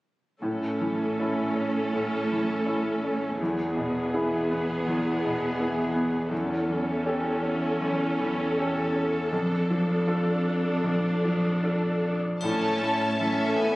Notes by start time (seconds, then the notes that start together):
0.42 A2 C#4 A4
0.81 E3
1.19 C#4 E4 A4
1.56 C#4
1.93 A2
2.32 E3
2.66 C#4 E4 A4
3.04 C#4
3.40 E2 B3 G#4
3.77 B2
4.14 B3 E4 G#4
4.51 B3
4.87 E2
5.25 B2
5.59 B3 E4 G#4
5.94 B3
6.31 E2 C#4 A4
6.69 E3
7.06 C#4 G4 A4
7.42 C#4
7.80 E2
8.20 E3
8.57 C#4 G4 A4
8.96 C#4
9.31 F2 D4
9.70 F3
10.07 D4 F4 A4
10.48 D4
10.84 F2
11.25 F3
11.62 D4 F4 A4
12.05 D4
12.41 A2 A3 C#4 A4 C#5 A5, triangle
12.68 A3
12.81 C#4 E4
12.93 C#5
13.19 E3 C#4 A4 E5
13.45 A4
13.56 B3 E4 G#5
13.71 C#5